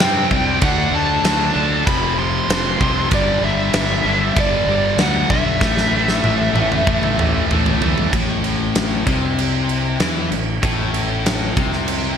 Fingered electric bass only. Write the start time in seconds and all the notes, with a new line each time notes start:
Already playing: G2
0.31 C2
0.62 D2
0.92 D2
1.24 D2
1.55 D2
1.87 F1
2.49 F1
2.80 C2
3.11 G1
3.43 G1
3.74 G1
4.04 G1
4.36 G1
4.66 G1
4.97 D2
5.30 B1
5.61 A1
5.92 A1
6.23 A1
6.53 A1
6.87 A1
7.49 A1
7.81 E2
8.12 A1
9.07 C2
10.00 E2
10.32 A1
10.63 A1
11.57 C2